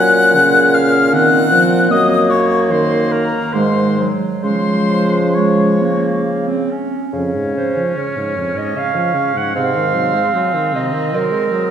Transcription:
0.00 1.92 A#2 medium
0.00 0.36 F#3 medium
0.00 0.33 C#4 medium
0.00 0.76 F#5 loud
0.00 0.76 F#6 loud
0.35 1.15 C#3 medium
0.35 1.14 C#4 medium
0.74 1.15 F5 loud
0.74 1.15 F6 loud
1.12 1.53 D#3 medium
1.12 1.92 C4 medium
1.12 1.90 F#5 medium
1.12 1.92 F#6 loud
1.52 1.91 F3 medium
1.90 3.37 F#2 medium
1.90 2.73 F#3 medium
1.90 3.56 A#3 medium
1.90 2.32 D#5 loud
1.90 2.31 D#6 loud
2.30 2.73 C#5 medium
2.30 2.70 C#6 medium
2.71 3.38 D#3 medium
2.71 3.14 C5 medium
2.71 3.13 C6 medium
3.12 3.55 A#4 medium
3.12 3.55 A#5 medium
3.53 4.10 G#2 medium
3.53 4.11 D#3 medium
3.53 3.98 G#3 medium
3.53 4.11 C5 medium
3.53 4.11 C6 medium
3.99 4.46 F#3 medium
4.43 6.74 C#3 medium
4.43 6.75 F3 medium
4.43 5.26 G#3 medium
4.43 5.36 C5 medium
4.43 5.36 C6 loud
5.34 5.77 G#3 medium
5.34 6.24 C#5 medium
5.34 6.24 C#6 medium
5.81 6.49 A#3 medium
6.48 6.72 C4 medium
6.71 7.14 C#4 medium
7.12 7.36 F2 medium
7.12 7.82 C#3 medium
7.12 9.50 C#4 medium
7.35 7.57 G#2 soft
7.55 7.78 C#3 medium
7.55 7.99 C5 medium
7.77 7.98 F3 soft
7.95 8.17 C#3 medium
7.95 8.59 C#5 medium
7.95 8.76 F6 medium
8.16 8.38 G#2 medium
8.36 8.57 F2 medium
8.55 8.76 G#2 medium
8.55 8.79 D#5 medium
8.75 8.97 C#3 medium
8.75 9.39 F5 medium
8.75 9.56 C#6 medium
8.95 9.15 F3 medium
9.14 9.36 C#3 medium
9.35 9.55 G#2 medium
9.35 9.55 F#5 medium
9.55 10.22 G#2 medium
9.55 9.77 C3 medium
9.55 11.71 C4 medium
9.55 10.73 F5 medium
9.55 10.38 C6 medium
9.75 9.96 D#3 soft
9.95 10.16 F#3 medium
10.14 10.35 G#3 medium
10.34 10.55 F#3 medium
10.34 10.78 G#5 medium
10.54 10.75 D#3 medium
10.74 10.94 C3 medium
10.74 11.17 D#5 medium
10.74 11.16 A#5 medium
10.93 11.15 D#3 medium
11.13 11.33 F#3 medium
11.13 11.71 A#4 medium
11.13 11.53 C6 medium
11.32 11.53 G#3 medium
11.52 11.71 F#3 medium
11.52 11.71 D#6 medium

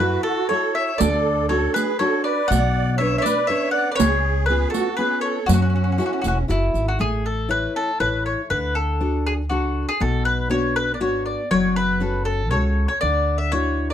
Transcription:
0.00 0.15 F#2 medium
0.00 0.40 E4 soft
0.00 0.22 F#4 medium
0.00 0.40 F#4 soft
0.00 0.40 A4 medium
0.00 0.23 B4 medium
0.23 0.48 F#4 medium
0.23 0.47 A4 loud
0.48 0.90 E4 soft
0.48 0.91 F#4 soft
0.48 0.72 A4 medium
0.48 0.91 A4 medium
0.48 0.73 C#5 medium
0.72 0.97 C#5 medium
0.72 0.98 E5 medium
0.98 1.66 D2 medium
0.98 1.49 D3 medium
0.98 1.46 A4 medium
0.98 1.46 D5 medium
0.98 riq medium
1.48 1.90 C#4 soft
1.48 1.90 D4 soft
1.48 1.90 F#4 soft
1.48 1.72 A4 medium
1.48 1.73 C#5 medium
1.73 1.97 G#4 medium
1.73 1.99 B4 loud
1.73 riq soft
1.98 2.40 C#4 soft
1.98 2.40 D4 soft
1.98 2.40 F#4 soft
1.98 2.22 A4 medium
1.98 2.23 C#5 medium
2.23 2.47 B4 medium
2.23 2.48 D5 medium
2.47 3.15 B1 medium
2.47 2.98 B2 medium
2.47 2.95 D5 medium
2.47 2.95 F#5 loud
2.52 riq medium
2.97 3.40 C#4 soft
2.97 3.40 D4 soft
2.97 3.40 B4 soft
2.97 3.16 C#5 medium
2.97 3.16 E5 medium
3.18 3.24 C#5 medium
3.18 3.25 E5 medium
3.22 3.47 B4 medium
3.22 3.46 D5 medium
3.22 riq soft
3.47 3.89 C#4 soft
3.47 3.89 D4 soft
3.47 3.89 B4 soft
3.47 3.71 C#5 medium
3.47 3.71 E5 medium
3.71 3.90 D5 medium
3.71 3.89 F#5 medium
3.92 3.98 B4 medium
3.92 3.95 D5 medium
3.96 4.64 C#2 medium
3.96 4.47 C#3 medium
3.96 4.45 G#4 medium
3.96 4.43 C#5 loud
4.00 riq medium
4.46 4.89 B3 soft
4.46 4.71 G#4 medium
4.46 4.70 B4 medium
4.50 4.89 C#4 soft
4.50 4.90 F4 medium
4.70 4.96 F#4 medium
4.70 4.96 A4 medium
4.74 riq soft
4.97 5.39 B3 medium
4.97 5.39 C#4 soft
4.97 5.39 F4 soft
4.97 5.21 G#4 medium
4.97 5.21 B4 medium
5.21 5.46 A4 medium
5.21 5.48 C#5 medium
5.46 5.98 F#2 medium
5.46 5.97 F#3 medium
5.46 6.45 C#4 medium
5.46 5.52 F#4 medium
5.46 riq medium
5.54 5.61 F#4 medium
5.62 5.68 F#4 medium
5.70 5.74 F#4 soft
5.76 5.83 F#4 soft
5.84 5.91 F#4 soft
5.92 5.97 F#4 soft
5.98 6.39 E4 soft
5.98 6.05 F#4 soft
5.98 6.40 F#4 soft
5.98 6.40 A4 soft
5.98 riq soft
6.06 6.12 F#4 medium
6.13 6.20 F#4 soft
6.22 6.47 E1 medium
6.22 6.27 F#4 medium
6.22 riq soft
6.28 6.37 F#4 medium
6.48 6.73 F#1 medium
6.48 6.89 E4 soft
6.48 6.86 E4 medium
6.48 6.90 F#4 soft
6.48 6.90 A4 soft
6.48 riq soft
6.74 6.97 G#1 medium
6.74 riq soft
6.88 7.00 F#4 medium
6.99 7.66 A1 medium
6.99 7.49 A3 medium
6.99 7.24 G#4 medium
7.26 7.50 A4 medium
7.49 7.90 E4 soft
7.49 7.90 A4 soft
7.49 7.74 B4 medium
7.49 7.90 C#5 soft
7.76 8.00 A4 medium
8.00 8.33 A1 medium
8.00 8.41 E4 soft
8.00 8.41 A4 soft
8.00 8.24 B4 medium
8.00 8.41 C#5 soft
8.26 8.50 C#5 medium
8.50 9.51 D2 medium
8.50 8.99 D3 medium
8.50 8.74 B4 medium
8.75 9.26 A4 medium
9.00 9.41 D4 soft
9.00 9.41 F#4 soft
9.00 9.41 A4 soft
9.27 9.33 G#4 medium
9.49 9.84 C#2 medium
9.49 9.91 D4 soft
9.49 9.88 F#4 medium
9.49 9.91 F#4 soft
9.49 9.91 A4 medium
9.89 10.00 G#4 medium
10.00 11.01 B1 medium
10.00 10.49 B2 medium
10.00 10.25 A4 medium
10.25 10.49 B4 medium
10.50 10.90 B3 soft
10.50 10.90 D4 soft
10.50 10.91 F#4 soft
10.50 10.74 C#5 medium
10.76 10.94 B4 medium
10.94 11.01 D5 medium
11.00 11.34 G#1 medium
11.00 11.41 B3 soft
11.00 11.41 D4 soft
11.00 11.41 F#4 medium
11.00 11.24 C#5 medium
11.26 11.49 D5 medium
11.51 12.52 F#1 medium
11.51 12.00 F#3 medium
11.51 11.75 C#5 loud
11.76 12.23 B4 loud
12.00 12.41 C#4 soft
12.00 12.42 F#4 soft
12.00 12.42 A4 soft
12.25 12.50 A4 medium
12.51 12.85 C#2 medium
12.51 12.92 C#4 soft
12.51 12.92 F#4 soft
12.51 12.93 A4 medium
12.51 12.87 C#5 medium
12.88 13.00 C#5 medium
13.01 13.94 D2 medium
13.01 13.52 D3 medium
13.01 13.37 D5 medium
13.38 13.51 E5 medium
13.52 13.93 D4 soft
13.52 13.93 E4 soft
13.52 13.94 F#4 soft
13.52 13.88 C#5 medium
13.90 13.94 D5 medium

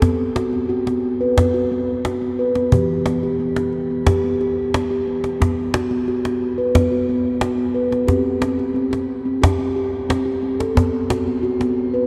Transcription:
0.02 0.36 B3 medium
0.02 cajon bass medium
0.02 cajon slap soft
0.36 0.53 F#4 medium
0.36 cajon slap soft
0.53 0.69 B3 medium
0.53 cajon slap soft
0.69 0.86 F#4 medium
0.69 cajon slap soft
0.86 1.20 B3 medium
0.86 cajon slap soft
1.21 1.37 B4 medium
1.37 1.54 B3 medium
1.37 cajon bass medium
1.37 cajon slap medium
1.54 1.71 F#4 medium
1.54 cajon slap soft
1.71 2.05 B3 medium
2.05 2.22 F#4 medium
2.05 cajon slap soft
2.22 2.38 B3 medium
2.39 2.55 B4 medium
2.55 2.72 B3 medium
2.55 cajon slap soft
2.72 5.37 E3 medium
2.72 3.06 G4 medium
2.72 cajon bass soft
3.06 3.23 B3 medium
3.06 cajon slap soft
3.23 3.39 G4 medium
3.23 cajon slap soft
3.40 3.56 B3 medium
3.56 3.90 G4 medium
3.56 cajon slap soft
3.73 cajon slap soft
3.91 4.07 B3 medium
4.07 4.23 G4 medium
4.07 cajon bass medium
4.07 cajon slap medium
4.24 4.40 B3 medium
4.41 4.74 G4 medium
4.41 cajon slap soft
4.74 4.91 B3 medium
4.74 cajon slap medium
4.90 5.07 G4 medium
5.07 5.24 B3 medium
5.24 5.41 G4 medium
5.24 cajon slap soft
5.40 5.90 B3 medium
5.40 cajon bass medium
5.40 cajon slap soft
5.74 5.91 F#4 medium
5.74 cajon slap medium
5.91 6.07 B3 medium
5.91 cajon slap soft
6.08 6.24 F#4 medium
6.08 cajon slap soft
6.25 6.58 B3 medium
6.25 cajon slap soft
6.58 6.75 B4 medium
6.75 6.92 B3 medium
6.75 cajon bass medium
6.75 cajon slap soft
6.92 7.08 F#4 medium
7.09 7.42 B3 medium
7.41 7.58 F#4 medium
7.41 cajon slap medium
7.58 7.75 B3 medium
7.74 7.92 B4 medium
7.91 8.08 B3 medium
7.91 cajon slap soft
8.07 8.40 C4 medium
8.07 8.41 G4 medium
8.07 cajon bass soft
8.07 cajon slap soft
8.41 8.58 C4 medium
8.41 cajon slap soft
8.58 8.75 G4 medium
8.58 cajon slap soft
8.74 8.92 C4 medium
8.74 cajon slap soft
8.91 9.25 G4 medium
8.91 cajon slap soft
9.25 9.42 C4 medium
9.42 9.59 G4 medium
9.42 cajon bass medium
9.42 cajon slap medium
9.59 9.76 C4 medium
9.59 cajon slap soft
9.76 10.09 G4 medium
10.09 10.26 C4 medium
10.09 cajon slap medium
10.25 10.42 G4 medium
10.42 10.59 C4 medium
10.60 10.76 A4 medium
10.60 cajon slap soft
10.75 11.09 B3 medium
10.75 cajon bass medium
10.75 cajon slap soft
11.10 11.27 F#4 medium
11.10 cajon slap medium
11.27 11.43 B3 medium
11.27 cajon slap soft
11.43 11.60 F#4 medium
11.43 cajon slap soft
11.60 11.93 B3 medium
11.60 cajon slap soft
11.94 12.07 B4 medium

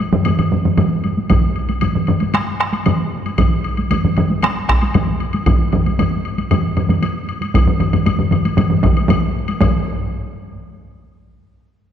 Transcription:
0.00 taiko high soft
0.13 taiko low-mid loud
0.13 taiko mid loud
0.13 taiko high soft
0.25 taiko low-mid medium
0.25 taiko mid medium
0.25 taiko high medium
0.25 high woodblock medium
0.39 taiko low-mid medium
0.39 taiko mid medium
0.39 high woodblock soft
0.52 taiko low-mid medium
0.52 taiko mid medium
0.52 taiko high soft
0.65 taiko low-mid medium
0.65 taiko mid medium
0.65 taiko high soft
0.77 taiko low-mid medium
0.77 taiko mid medium
0.77 taiko high medium
0.77 high woodblock soft
1.04 taiko high soft
1.04 high woodblock soft
1.17 taiko high soft
1.30 taiko medium
1.30 taiko low-mid medium
1.30 taiko mid medium
1.30 taiko high medium
1.30 high woodblock medium
1.56 high woodblock soft
1.69 taiko high medium
1.69 high woodblock soft
1.81 taiko low-mid medium
1.81 taiko mid medium
1.81 taiko high medium
1.81 high woodblock soft
1.95 taiko low-mid medium
1.95 taiko mid medium
2.07 taiko low-mid medium
2.07 taiko mid medium
2.07 high woodblock soft
2.20 taiko high medium
2.20 high woodblock soft
2.34 taiko rim medium
2.34 taiko high medium
2.34 high woodblock medium
2.60 taiko rim medium
2.60 high woodblock soft
2.73 taiko high medium
2.73 high woodblock soft
2.86 taiko low-mid medium
2.86 taiko mid medium
2.86 taiko high medium
2.86 high woodblock medium
3.26 taiko high medium
3.26 high woodblock soft
3.38 taiko medium
3.38 taiko low-mid medium
3.38 taiko mid medium
3.38 taiko high medium
3.38 high woodblock medium
3.64 high woodblock soft
3.77 taiko high medium
3.77 high woodblock soft
3.91 taiko low-mid medium
3.91 taiko mid medium
3.91 taiko high medium
3.91 high woodblock medium
4.04 taiko low-mid medium
4.04 taiko mid medium
4.17 taiko low-mid medium
4.17 taiko mid medium
4.17 high woodblock soft
4.30 taiko high medium
4.43 taiko rim medium
4.43 taiko high medium
4.43 high woodblock medium
4.68 taiko rim medium
4.68 taiko medium
4.68 high woodblock soft
4.82 taiko high medium
4.82 high woodblock soft
4.94 taiko low-mid loud
4.94 taiko mid medium
4.94 taiko high medium
4.94 high woodblock soft
5.20 high woodblock soft
5.33 taiko high medium
5.33 high woodblock soft
5.46 taiko loud
5.46 taiko low-mid medium
5.46 taiko mid medium
5.46 taiko high medium
5.46 high woodblock medium
5.72 taiko low-mid loud
5.72 taiko mid medium
5.72 high woodblock soft
5.86 taiko high medium
5.86 high woodblock soft
5.99 taiko low-mid medium
5.99 taiko mid medium
5.99 taiko high medium
5.99 high woodblock soft
6.25 high woodblock soft
6.38 taiko high medium
6.38 high woodblock soft
6.51 taiko low-mid loud
6.51 taiko mid loud
6.51 taiko high medium
6.51 high woodblock medium
6.77 taiko low-mid medium
6.77 taiko mid medium
6.77 high woodblock soft
6.89 taiko low-mid medium
6.89 taiko mid medium
6.89 taiko high soft
6.89 high woodblock soft
7.02 taiko high medium
7.02 high woodblock soft
7.29 high woodblock soft
7.41 taiko high soft
7.41 high woodblock soft
7.54 taiko medium
7.54 taiko low-mid medium
7.54 taiko mid medium
7.54 taiko high medium
7.54 high woodblock medium
7.67 taiko low-mid medium
7.67 taiko mid medium
7.80 taiko low-mid medium
7.80 taiko mid medium
7.80 high woodblock soft
7.93 taiko low-mid medium
7.93 taiko mid medium
7.93 taiko high medium
7.93 high woodblock soft
8.06 taiko low-mid medium
8.06 taiko mid medium
8.06 taiko high medium
8.06 high woodblock medium
8.19 taiko low-mid medium
8.19 taiko mid medium
8.31 taiko low-mid medium
8.31 taiko mid medium
8.31 high woodblock soft
8.45 taiko high medium
8.45 high woodblock soft
8.57 taiko low-mid loud
8.57 taiko mid loud
8.57 taiko high medium
8.57 high woodblock medium
8.70 taiko low-mid medium
8.70 taiko mid medium
8.83 taiko medium
8.83 taiko low-mid loud
8.83 taiko mid loud
8.83 high woodblock soft
8.97 taiko high medium
8.97 high woodblock soft
9.08 taiko low-mid loud
9.08 taiko mid loud
9.08 taiko high medium
9.08 high woodblock medium
9.48 taiko high medium
9.48 high woodblock soft
9.61 taiko medium
9.61 taiko low-mid loud
9.61 taiko mid loud
9.61 taiko high medium
9.61 high woodblock medium

